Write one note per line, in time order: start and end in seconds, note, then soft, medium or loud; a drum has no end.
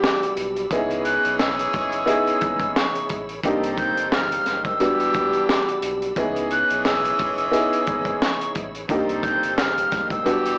0.00 0.35 E3 medium
0.00 0.62 G3 loud
0.00 0.69 G3 medium
0.00 0.62 B3 medium
0.00 0.35 D4 medium
0.00 0.62 D4 medium
0.00 0.62 F#4 loud
0.00 0.35 G4 medium
0.00 0.70 D5 medium
0.00 0.69 B5 medium
0.00 0.33 D6 medium
0.00 0.70 E6 medium
0.00 snare loud
0.05 clap medium
0.23 closed hi-hat medium
0.37 0.67 B1 medium
0.37 closed hi-hat medium
0.56 closed hi-hat medium
0.71 1.18 C#2 loud
0.71 3.06 E3 medium
0.71 1.99 B3 loud
0.71 3.06 C#4 medium
0.71 1.99 D#4 medium
0.71 1.99 E4 medium
0.71 3.41 G#4 medium
0.71 3.06 G#4 loud
0.71 1.99 G#4 loud
0.71 3.41 C#5 medium
0.71 3.41 B5 medium
0.71 3.41 E6 medium
0.71 kick loud
0.71 closed hi-hat loud
0.91 closed hi-hat medium
1.05 1.35 F#6 medium
1.05 closed hi-hat medium
1.25 1.67 B1 medium
1.25 closed hi-hat medium
1.39 1.90 E6 medium
1.39 snare loud
1.39 clap loud
1.59 closed hi-hat medium
1.73 2.03 F#1 medium
1.73 kick loud
1.73 closed hi-hat medium
1.92 2.72 E6 medium
1.92 closed hi-hat medium
2.06 3.17 B3 loud
2.06 3.18 D#4 medium
2.06 3.18 E4 medium
2.06 3.18 G#4 loud
2.06 closed hi-hat medium
2.27 closed hi-hat medium
2.41 2.71 G#1 medium
2.41 kick loud
2.41 closed hi-hat medium
2.60 kick loud
2.60 closed hi-hat medium
2.75 3.06 C#6 medium
2.75 snare loud
2.75 clap loud
2.95 closed hi-hat medium
3.09 3.40 A1 loud
3.09 kick medium
3.09 closed hi-hat medium
3.29 closed hi-hat medium
3.43 3.91 C2 loud
3.43 4.44 D#3 medium
3.43 6.14 G3 medium
3.43 4.80 A#3 loud
3.43 4.44 C4 medium
3.43 4.79 D4 medium
3.43 4.81 D#4 medium
3.43 4.81 G4 loud
3.43 4.44 A4 medium
3.43 4.79 C5 medium
3.43 4.79 G5 medium
3.43 4.79 D#6 medium
3.43 kick loud
3.43 closed hi-hat loud
3.63 closed hi-hat medium
3.77 4.09 G6 medium
3.77 kick loud
3.77 closed hi-hat medium
3.97 4.40 G1 loud
3.97 closed hi-hat medium
4.12 4.63 F6 medium
4.12 snare loud
4.12 clap loud
4.32 closed hi-hat medium
4.46 4.76 F#1 loud
4.46 snare soft
4.46 closed hi-hat medium
4.65 5.44 E6 medium
4.65 kick medium
4.65 closed hi-hat medium
4.79 5.10 E1 loud
4.79 5.80 E3 medium
4.79 6.07 G3 loud
4.79 6.07 B3 medium
4.79 5.80 D4 medium
4.79 6.08 D4 medium
4.79 6.08 F#4 loud
4.79 5.80 G4 loud
4.79 6.16 D5 medium
4.79 8.86 B5 medium
4.79 8.86 E6 medium
4.79 closed hi-hat medium
5.00 closed hi-hat medium
5.14 5.44 E1 medium
5.14 kick loud
5.14 closed hi-hat medium
5.33 closed hi-hat soft
5.47 5.78 D6 medium
5.47 snare loud
5.47 clap medium
5.68 closed hi-hat medium
5.82 6.12 B1 medium
5.82 closed hi-hat medium
6.02 closed hi-hat medium
6.16 6.63 C#2 loud
6.16 8.51 E3 medium
6.16 7.44 B3 loud
6.16 8.51 C#4 medium
6.16 7.44 D#4 medium
6.16 7.45 E4 medium
6.16 8.51 G#4 medium
6.16 8.86 G#4 medium
6.16 7.45 G#4 loud
6.16 8.86 C#5 medium
6.16 kick loud
6.16 closed hi-hat loud
6.36 closed hi-hat medium
6.51 6.82 F#6 medium
6.51 closed hi-hat medium
6.70 7.12 B1 medium
6.70 closed hi-hat medium
6.85 7.35 E6 medium
6.85 snare loud
6.85 clap loud
7.05 closed hi-hat medium
7.19 7.49 F#1 loud
7.19 kick loud
7.19 closed hi-hat medium
7.37 8.16 E6 medium
7.37 closed hi-hat medium
7.51 8.63 B3 loud
7.51 8.63 D#4 medium
7.51 8.63 E4 medium
7.51 8.63 G#4 loud
7.51 closed hi-hat medium
7.73 closed hi-hat medium
7.87 8.17 G#1 medium
7.87 kick loud
7.87 closed hi-hat medium
8.05 kick loud
8.05 closed hi-hat medium
8.22 8.52 C#6 medium
8.22 snare loud
8.22 clap medium
8.41 closed hi-hat medium
8.55 8.85 A1 loud
8.55 kick medium
8.55 closed hi-hat medium
8.75 closed hi-hat medium
8.88 9.36 C2 loud
8.88 9.89 D#3 medium
8.88 10.58 G3 medium
8.88 10.26 A#3 loud
8.88 9.89 C4 medium
8.88 10.25 D4 medium
8.88 10.26 D#4 medium
8.88 10.26 G4 loud
8.88 9.89 A4 medium
8.88 10.24 C5 medium
8.88 10.24 G5 medium
8.88 10.24 D#6 medium
8.88 kick loud
8.88 closed hi-hat loud
9.09 closed hi-hat medium
9.23 9.54 G6 medium
9.23 kick loud
9.23 closed hi-hat medium
9.43 9.85 G1 medium
9.43 closed hi-hat medium
9.57 10.08 F6 medium
9.57 snare loud
9.57 clap loud
9.78 closed hi-hat medium
9.92 10.22 F#1 loud
9.92 kick loud
9.92 snare soft
9.92 closed hi-hat medium
10.10 10.58 E6 medium
10.10 kick loud
10.10 closed hi-hat medium
10.25 10.55 E1 loud
10.25 10.58 E3 medium
10.25 10.58 G3 loud
10.25 10.58 B3 medium
10.25 10.58 D4 medium
10.25 10.58 F#4 loud
10.25 10.58 G4 medium
10.25 10.58 D5 medium
10.25 10.58 B5 medium
10.25 10.58 E6 medium
10.25 closed hi-hat medium
10.45 closed hi-hat medium